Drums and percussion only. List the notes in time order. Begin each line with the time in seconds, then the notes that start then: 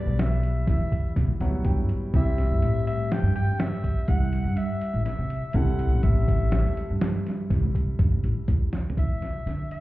0.19 snare, closed hi-hat
0.43 closed hi-hat
0.67 kick, snare, closed hi-hat
0.92 kick, closed hi-hat
1.16 kick, snare, closed hi-hat
1.41 snare, closed hi-hat
1.65 kick, closed hi-hat
1.89 closed hi-hat
2.14 kick, closed hi-hat
2.38 snare, closed hi-hat
2.62 closed hi-hat
2.87 closed hi-hat
3.12 snare, closed hi-hat
3.36 closed hi-hat
3.60 snare, closed hi-hat
3.84 kick, closed hi-hat
4.08 kick, closed hi-hat
4.33 closed hi-hat
4.57 closed hi-hat
4.81 closed hi-hat
5.06 snare, closed hi-hat
5.30 closed hi-hat
5.53 kick, closed hi-hat
5.79 closed hi-hat
6.03 kick, closed hi-hat
6.28 kick, closed hi-hat
6.52 snare, closed hi-hat
6.77 closed hi-hat
7.01 snare, closed hi-hat
7.27 snare, closed hi-hat
7.50 kick, snare, closed hi-hat
7.75 kick, closed hi-hat
7.99 kick, closed hi-hat
8.24 closed hi-hat
8.48 kick, closed hi-hat
8.73 snare, closed hi-hat
8.90 floor tom
8.97 kick, closed hi-hat
9.22 snare, closed hi-hat
9.47 snare, closed hi-hat
9.71 closed hi-hat